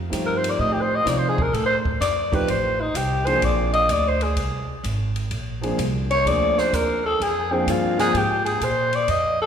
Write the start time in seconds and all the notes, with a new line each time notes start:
Already playing: F2
0.10 G2 F3 A3 C4 D#4 G4, kick, hi-hat pedal, ride
0.26 A#4
0.37 C5
0.44 ride
0.49 D5
0.59 A2 D#5, kick
0.73 G4
0.82 C5
0.95 D#5
1.04 C3 F3 A3 C4 D#4 F4 D5, kick, snare, hi-hat pedal, ride
1.18 C5
1.29 G#4
1.38 A#4, kick
1.53 A2 A4, kick, ride
1.66 C5
1.85 kick
2.00 F2 D5, kick, snare, hi-hat pedal, ride
2.31 F3 A3 C4 D#4 G4 B4, kick, ride
2.48 A1 C5, kick, ride
2.81 D#4
2.94 C2 G4, kick, hi-hat pedal, ride
3.26 F3 A#3 C4 D4 G#4 C5, ride
3.42 A#1 D5, kick, ride
3.73 D#5, ride
3.89 D2 D5, kick, hi-hat pedal, ride
4.08 C5
4.21 G#4, ride
4.36 C2, kick, ride
4.67 muted upright bass stroke
4.83 G#1, kick, hi-hat pedal, ride
5.16 ride
5.31 A#1, kick, ride
5.61 F3 A#3 C4 D4 G#4, ride
5.78 C2, kick, hi-hat pedal, ride
6.11 C#5, ride
6.24 D2 F3 A#3 C4 D4 G#4 D5, kick, ride
6.58 C5, snare
6.73 D#2 A#4, kick, hi-hat pedal, ride
7.06 A4
7.20 F2 G#4, kick, ride
7.51 F3 A#3 C4 D4 G#4
7.67 G2 F4, kick, hi-hat pedal, ride
7.98 F3 A#3 C4 D4 F4 G#4, snare, ride
8.14 G#2 G4, kick, ride
8.45 G#4, ride
8.60 A#2 C5, kick, hi-hat pedal, ride
8.93 D5, ride
9.08 F2 D#5, kick, ride
9.42 A4